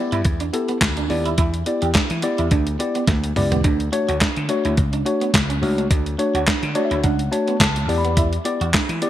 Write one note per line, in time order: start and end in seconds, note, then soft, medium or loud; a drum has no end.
0.00 0.20 B3 medium
0.00 0.20 E4 medium
0.00 0.20 G4 medium
0.00 0.20 D5 medium
0.12 0.25 G2 medium
0.12 0.23 E4 medium
0.12 closed hi-hat medium
0.25 0.49 E2 loud
0.25 kick loud
0.25 closed hi-hat medium
0.40 0.51 D4 medium
0.40 closed hi-hat medium
0.53 0.77 B3 medium
0.53 0.77 E4 medium
0.53 0.77 G4 medium
0.53 0.77 A4 loud
0.53 muted clean electric guitar stroke soft
0.53 closed hi-hat medium
0.68 0.79 B3 medium
0.68 closed hi-hat soft
0.81 1.05 D2 medium
0.81 kick loud
0.81 snare loud
0.81 clap loud
0.81 closed hi-hat loud
0.97 1.08 D4 medium
0.97 closed hi-hat medium
1.09 1.34 D#2 medium
1.09 1.33 B3 medium
1.09 1.33 E4 medium
1.09 1.33 G4 medium
1.09 1.34 D5 medium
1.09 muted clean electric guitar stroke soft
1.09 open hi-hat medium
1.26 1.36 E4 medium
1.26 closed hi-hat soft
1.38 1.62 E2 medium
1.38 1.51 E4 medium
1.38 kick loud
1.38 closed hi-hat loud
1.54 closed hi-hat soft
1.66 1.90 B3 medium
1.66 1.90 E4 medium
1.66 1.90 G4 medium
1.66 1.90 D5 medium
1.66 muted clean electric guitar stroke soft
1.66 closed hi-hat medium
1.82 1.93 E2 loud
1.82 1.93 G4 medium
1.82 closed hi-hat medium
1.94 2.08 D4 medium
1.94 muted slap bass stroke soft
1.94 kick loud
1.94 snare loud
1.94 clap medium
1.94 closed hi-hat medium
2.10 2.21 E3 medium
2.10 closed hi-hat medium
2.22 2.46 B3 medium
2.22 2.47 E4 medium
2.22 2.47 G4 medium
2.22 2.47 D5 loud
2.22 muted clean electric guitar stroke soft
2.22 closed hi-hat medium
2.38 2.49 E2 medium
2.38 2.49 E4 medium
2.38 closed hi-hat medium
2.51 2.75 D2 medium
2.51 2.64 D4 medium
2.51 kick loud
2.51 closed hi-hat medium
2.67 closed hi-hat medium
2.79 3.03 B3 medium
2.79 3.03 E4 medium
2.79 3.03 G4 medium
2.79 3.03 D5 medium
2.79 muted clean electric guitar stroke soft
2.79 closed hi-hat medium
2.95 3.06 B3 medium
2.95 closed hi-hat soft
3.07 3.32 D2 medium
3.07 3.21 A3 medium
3.07 kick loud
3.07 snare medium
3.07 closed hi-hat medium
3.24 muted clean electric guitar stroke soft
3.24 closed hi-hat medium
3.36 3.60 C#2 medium
3.36 3.60 B3 medium
3.36 3.60 E4 medium
3.36 3.60 G4 medium
3.36 3.60 D5 medium
3.36 mid tom medium
3.36 open hi-hat medium
3.52 3.62 B3 medium
3.52 closed hi-hat soft
3.52 floor tom medium
3.64 3.88 D2 medium
3.64 3.77 D4 medium
3.64 kick loud
3.64 closed hi-hat medium
3.80 closed hi-hat soft
3.92 4.16 A3 medium
3.92 4.16 D4 medium
3.92 4.16 F#4 medium
3.92 4.16 C#5 loud
3.92 muted clean electric guitar stroke soft
3.92 closed hi-hat medium
4.09 4.19 D2 medium
4.09 4.19 F#4 medium
4.09 closed hi-hat medium
4.21 4.34 D4 medium
4.21 muted slap bass stroke soft
4.21 kick loud
4.21 snare loud
4.21 clap medium
4.21 closed hi-hat medium
4.37 4.47 D3 medium
4.37 closed hi-hat medium
4.49 4.73 A3 medium
4.49 4.73 D4 medium
4.49 4.73 F#4 medium
4.49 4.73 C#5 loud
4.49 muted clean electric guitar stroke soft
4.49 closed hi-hat medium
4.65 4.76 D2 medium
4.65 4.75 E4 medium
4.65 closed hi-hat medium
4.77 5.02 C#2 medium
4.77 kick loud
4.77 closed hi-hat medium
4.93 5.04 D4 medium
4.93 closed hi-hat medium
5.05 5.29 A3 medium
5.05 5.29 D4 medium
5.05 5.29 F#4 medium
5.05 5.30 C#5 medium
5.05 muted clean electric guitar stroke soft
5.05 closed hi-hat medium
5.21 5.32 B3 medium
5.21 closed hi-hat soft
5.34 5.58 C#2 medium
5.34 kick loud
5.34 snare loud
5.34 clap loud
5.34 closed hi-hat loud
5.50 5.60 C#4 medium
5.50 closed hi-hat medium
5.62 5.86 C#2 medium
5.62 5.86 A3 medium
5.62 5.86 D4 medium
5.62 5.86 F#4 medium
5.62 5.86 C#5 medium
5.62 muted clean electric guitar stroke soft
5.62 open hi-hat medium
5.78 5.89 D4 medium
5.78 closed hi-hat soft
5.91 6.15 D2 loud
5.91 6.04 D4 medium
5.91 kick loud
5.91 closed hi-hat medium
6.06 closed hi-hat soft
6.18 6.42 A3 medium
6.18 6.42 D4 medium
6.18 6.42 F#4 medium
6.18 6.43 C#5 loud
6.18 muted clean electric guitar stroke soft
6.18 closed hi-hat medium
6.34 6.45 D2 loud
6.34 6.45 F#4 medium
6.34 closed hi-hat medium
6.47 6.61 D4 medium
6.47 muted slap bass stroke soft
6.47 kick loud
6.47 snare loud
6.47 clap medium
6.47 closed hi-hat medium
6.63 6.74 D3 loud
6.63 closed hi-hat medium
6.75 6.99 A3 loud
6.75 6.99 D4 medium
6.75 6.99 F#4 medium
6.75 6.99 C#5 loud
6.75 6.84 D5 medium
6.75 muted clean electric guitar stroke soft
6.75 closed hi-hat medium
6.85 7.03 E5 medium
6.91 7.02 D2 medium
6.91 7.02 E4 medium
6.91 closed hi-hat medium
7.04 7.28 C#2 medium
7.04 7.17 D4 medium
7.04 7.30 F#5 medium
7.04 kick loud
7.04 closed hi-hat medium
7.19 closed hi-hat medium
7.31 7.55 A3 medium
7.31 7.56 D4 medium
7.31 7.56 F#4 medium
7.31 7.56 C#5 medium
7.31 7.58 A5 medium
7.31 muted clean electric guitar stroke soft
7.31 closed hi-hat medium
7.48 7.59 B3 medium
7.48 closed hi-hat soft
7.60 7.84 C#2 medium
7.60 7.74 A3 medium
7.60 7.96 A5 medium
7.60 kick loud
7.60 snare loud
7.60 clap loud
7.60 closed hi-hat loud
7.76 muted clean electric guitar stroke soft
7.76 closed hi-hat medium
7.88 8.37 E2 medium
7.88 8.35 B3 medium
7.88 8.35 E4 medium
7.88 8.35 G4 medium
7.88 8.36 D5 medium
7.88 open hi-hat medium
7.98 8.16 B5 medium
8.05 8.15 B3 medium
8.05 closed hi-hat medium
8.17 8.30 E4 medium
8.17 kick loud
8.17 closed hi-hat loud
8.33 closed hi-hat soft
8.45 8.69 B3 medium
8.45 8.69 E4 medium
8.45 8.69 G4 medium
8.45 8.69 D5 loud
8.45 muted clean electric guitar stroke soft
8.45 closed hi-hat medium
8.61 8.72 E2 loud
8.61 8.72 F#4 medium
8.61 closed hi-hat medium
8.74 8.87 D4 medium
8.74 kick loud
8.74 snare loud
8.74 clap loud
8.74 closed hi-hat medium
8.89 9.00 E3 medium
8.89 closed hi-hat medium
9.02 9.10 B3 medium
9.02 9.10 E4 medium
9.02 9.10 G4 medium
9.02 9.10 D5 loud
9.02 muted clean electric guitar stroke soft
9.02 closed hi-hat medium